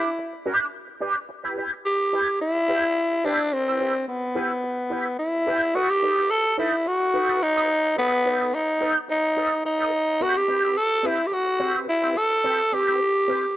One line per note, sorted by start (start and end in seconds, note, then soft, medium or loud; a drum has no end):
0.00 0.46 E4 loud
0.05 muted clean electric guitar stroke soft
0.18 muted clean electric guitar stroke soft
0.33 muted clean electric guitar stroke soft
0.46 0.66 D4 medium
0.46 0.60 G4 loud
0.46 0.58 B4 loud
0.60 muted clean electric guitar stroke soft
0.88 muted clean electric guitar stroke soft
1.00 1.17 D4 medium
1.00 1.15 G4 medium
1.00 1.14 B4 medium
1.15 muted clean electric guitar stroke soft
1.29 muted clean electric guitar stroke soft
1.43 1.56 E4 medium
1.43 1.57 G4 medium
1.43 1.57 B4 medium
1.57 1.70 E4 medium
1.57 1.70 G4 medium
1.57 1.70 B4 medium
1.73 muted clean electric guitar stroke medium
1.86 2.37 G4 loud
2.00 muted clean electric guitar stroke soft
2.13 2.29 E4 medium
2.13 2.27 G4 medium
2.13 2.26 B4 medium
2.28 muted clean electric guitar stroke soft
2.40 3.27 E4 loud
2.40 muted clean electric guitar stroke soft
2.56 muted clean electric guitar stroke soft
2.68 2.84 E4 medium
2.68 2.83 G4 medium
2.68 2.82 B4 medium
2.83 muted clean electric guitar stroke medium
3.11 muted clean electric guitar stroke soft
3.24 3.55 D4 medium
3.24 3.40 E4 medium
3.24 3.39 G4 medium
3.24 3.38 B4 medium
3.40 muted clean electric guitar stroke soft
3.52 4.08 C4 loud
3.52 muted clean electric guitar stroke soft
3.67 3.79 E4 medium
3.67 3.80 G4 medium
3.67 3.80 B4 medium
3.80 3.93 E4 medium
3.80 3.93 G4 medium
3.80 3.93 B4 medium
3.95 muted clean electric guitar stroke soft
4.08 5.15 B3 medium
4.22 muted clean electric guitar stroke soft
4.35 4.51 E4 loud
4.35 4.50 G4 loud
4.35 4.49 B4 loud
4.51 muted clean electric guitar stroke soft
4.63 muted clean electric guitar stroke soft
4.77 muted clean electric guitar stroke soft
4.90 5.07 E4 medium
4.90 5.05 G4 medium
4.90 5.04 B4 medium
5.05 muted clean electric guitar stroke soft
5.19 5.76 E4 medium
5.33 muted clean electric guitar stroke soft
5.47 5.63 E4 medium
5.47 5.61 G4 loud
5.47 5.60 B4 loud
5.61 muted clean electric guitar stroke soft
5.74 5.91 D#4 medium
5.74 5.91 F#4 loud
5.74 5.89 A4 loud
5.74 5.88 B4 loud
5.89 6.32 G4 loud
5.89 muted clean electric guitar stroke medium
6.02 6.15 D#4 medium
6.02 6.15 A4 medium
6.02 6.16 B4 medium
6.17 6.29 D#4 medium
6.17 6.29 A4 medium
6.17 6.29 B4 medium
6.31 6.58 A4 loud
6.45 muted clean electric guitar stroke soft
6.57 6.74 D#4 loud
6.57 6.89 E4 medium
6.57 6.72 A4 loud
6.57 6.71 B4 loud
6.72 muted clean electric guitar stroke soft
6.85 7.44 F#4 loud
6.85 muted clean electric guitar stroke soft
7.00 muted clean electric guitar stroke soft
7.14 7.29 D#4 medium
7.14 7.28 A4 medium
7.14 7.28 B4 medium
7.29 7.40 D#4 medium
7.29 7.40 A4 medium
7.29 7.40 B4 medium
7.41 7.98 D#4 loud
7.41 muted clean electric guitar stroke soft
7.55 7.67 D#4 medium
7.55 7.68 A4 medium
7.55 7.68 B4 medium
7.68 muted clean electric guitar stroke soft
7.83 muted clean electric guitar stroke soft
7.96 8.56 B3 loud
7.96 8.13 D#4 medium
7.96 8.12 A4 medium
7.96 8.11 B4 medium
8.12 muted clean electric guitar stroke soft
8.25 8.38 D#4 medium
8.25 8.38 A4 medium
8.25 8.38 B4 medium
8.40 8.52 D#4 soft
8.40 8.52 A4 medium
8.40 8.51 B4 medium
8.54 8.94 D#4 loud
8.68 muted clean electric guitar stroke medium
8.81 8.97 D#4 medium
8.81 8.95 A4 loud
8.81 8.94 B4 loud
8.95 muted clean electric guitar stroke soft
9.08 9.62 D#4 loud
9.08 muted clean electric guitar stroke soft
9.24 muted clean electric guitar stroke medium
9.37 9.53 D#4 medium
9.37 9.51 A4 medium
9.37 9.50 B4 medium
9.51 muted clean electric guitar stroke medium
9.65 10.24 D#4 loud
9.65 muted clean electric guitar stroke soft
9.79 9.91 D#4 medium
9.79 9.91 A4 medium
9.79 9.92 B4 medium
9.92 muted clean electric guitar stroke soft
10.07 muted clean electric guitar stroke soft
10.20 10.41 C4 medium
10.20 10.39 F#4 loud
10.20 10.35 G4 medium
10.20 10.34 B4 loud
10.35 10.79 G4 loud
10.35 muted clean electric guitar stroke medium
10.48 10.61 C4 medium
10.48 10.61 G4 medium
10.48 10.62 B4 medium
10.63 10.75 C4 medium
10.63 10.75 G4 medium
10.63 10.75 B4 medium
10.78 11.08 A4 loud
10.90 muted clean electric guitar stroke medium
11.03 11.20 C4 medium
11.03 11.28 E4 medium
11.03 11.18 G4 medium
11.03 11.17 B4 loud
11.18 muted clean electric guitar stroke soft
11.27 11.35 G4 medium
11.31 11.76 F#4 loud
11.31 muted clean electric guitar stroke soft
11.46 muted clean electric guitar stroke medium
11.59 11.75 C4 medium
11.59 11.74 G4 medium
11.59 11.74 C5 medium
11.75 11.86 C4 medium
11.75 11.86 G4 medium
11.75 11.86 B4 medium
11.88 12.19 E4 loud
11.88 muted clean electric guitar stroke soft
12.02 12.15 C4 medium
12.02 12.15 G4 medium
12.02 12.15 B4 medium
12.16 12.75 A4 loud
12.16 muted clean electric guitar stroke medium
12.31 muted clean electric guitar stroke soft
12.44 12.60 C4 medium
12.44 12.59 G4 medium
12.44 12.58 B4 loud
12.59 muted clean electric guitar stroke soft
12.72 12.85 C4 medium
12.72 12.86 G4 medium
12.72 13.57 G4 loud
12.72 12.86 B4 medium
12.87 12.99 C4 medium
12.87 12.99 G4 medium
12.87 12.98 B4 medium
13.15 muted clean electric guitar stroke soft
13.28 13.44 C4 medium
13.28 13.43 G4 loud
13.28 13.41 B4 loud
13.43 muted clean electric guitar stroke medium